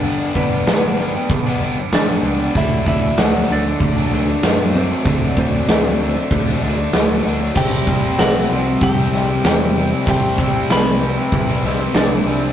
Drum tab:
CC |--------|--------|--------|x-------|
HH |o-o-o-o-|o-o-o-o-|o-o-o-o-|--o-o-o-|
SD |--o---o-|--o--oo-|--o--oo-|--o--oo-|
BD |-o--o---|oo--o---|oo--o---|oo--o---|

CC |--------|
HH |o-o-o-o-|
SD |--o--oo-|
BD |oo--o---|